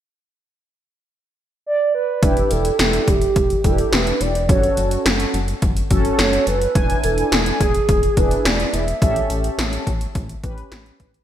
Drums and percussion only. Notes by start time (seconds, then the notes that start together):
2.23 kick, closed hi-hat
2.37 closed hi-hat
2.51 closed hi-hat
2.65 closed hi-hat
2.79 snare, closed hi-hat
2.93 closed hi-hat
3.08 kick, closed hi-hat
3.22 closed hi-hat
3.36 kick, closed hi-hat
3.50 closed hi-hat
3.64 kick, closed hi-hat
3.78 closed hi-hat
3.93 snare, closed hi-hat
4.07 closed hi-hat
4.21 closed hi-hat
4.35 closed hi-hat
4.49 kick, closed hi-hat
4.63 closed hi-hat
4.77 closed hi-hat
4.91 closed hi-hat
5.06 snare, closed hi-hat
5.20 closed hi-hat
5.34 closed hi-hat
5.48 closed hi-hat
5.62 kick, closed hi-hat
5.77 closed hi-hat
5.91 kick, closed hi-hat
6.05 closed hi-hat
6.19 snare, closed hi-hat
6.33 closed hi-hat
6.47 closed hi-hat
6.62 closed hi-hat
6.75 kick, closed hi-hat
6.90 closed hi-hat
7.04 closed hi-hat
7.18 closed hi-hat
7.32 snare, closed hi-hat
7.46 closed hi-hat
7.60 kick, closed hi-hat
7.74 closed hi-hat
7.89 kick, closed hi-hat
8.03 closed hi-hat
8.17 kick, closed hi-hat
8.31 closed hi-hat
8.45 snare, closed hi-hat
8.60 closed hi-hat
8.74 closed hi-hat
8.88 closed hi-hat
9.02 kick, closed hi-hat
9.16 closed hi-hat
9.30 closed hi-hat
9.44 closed hi-hat
9.59 snare, closed hi-hat
9.73 closed hi-hat
9.87 kick, closed hi-hat
10.01 closed hi-hat
10.15 kick, closed hi-hat
10.29 closed hi-hat
10.44 kick, closed hi-hat
10.58 closed hi-hat
10.72 snare, closed hi-hat
10.86 closed hi-hat
11.00 kick, closed hi-hat
11.14 closed hi-hat